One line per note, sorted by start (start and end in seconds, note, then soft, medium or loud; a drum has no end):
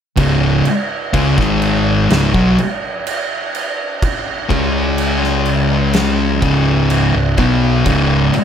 0.17 0.62 C#1 medium
0.17 0.64 C#2 medium
0.17 0.64 G#2 loud
0.17 0.65 C#3 medium
0.17 kick loud
0.17 crash medium
0.65 muted distorted electric guitar stroke medium
0.65 muted fingered electric bass stroke soft
0.65 crash medium
1.13 1.36 C#2 medium
1.13 1.36 C#3 loud
1.13 1.36 G#3 loud
1.13 kick loud
1.13 crash medium
1.37 2.06 G#1 medium
1.37 2.08 G#2 medium
1.37 2.08 D#3 medium
1.37 2.09 G#3 loud
1.37 kick loud
1.37 snare soft
1.62 crash medium
2.09 2.33 C#1 medium
2.09 2.32 C#2 medium
2.09 2.33 G#2 loud
2.09 snare loud
2.09 crash medium
2.33 2.57 B1 medium
2.33 2.56 B2 medium
2.33 2.57 F#3 loud
2.33 kick loud
2.58 crash medium
3.07 crash medium
3.55 crash medium
4.02 kick loud
4.02 crash medium
4.49 6.39 C#2 loud
4.49 6.41 C#3 medium
4.49 6.41 G#3 medium
4.49 6.41 C#4 loud
4.49 kick loud
4.49 crash medium
4.98 crash medium
5.23 snare soft
5.46 crash medium
5.93 snare loud
5.93 crash medium
6.41 7.10 C#1 loud
6.41 7.13 C#2 medium
6.41 7.13 G#2 medium
6.41 7.13 C#3 medium
6.41 kick loud
6.41 crash medium
6.90 crash medium
7.14 7.37 C#1 medium
7.14 7.37 C#2 medium
7.14 7.38 G#2 medium
7.37 7.83 B1 loud
7.37 7.85 B2 medium
7.37 7.85 F#3 medium
7.37 7.85 B3 loud
7.37 kick loud
7.37 crash medium
7.86 8.31 C#1 medium
7.86 8.33 C#2 loud
7.86 8.33 G#2 loud
7.86 8.33 C#3 loud
7.86 kick loud
7.86 crash medium
8.34 muted distorted electric guitar stroke medium
8.34 muted fingered electric bass stroke soft
8.34 crash medium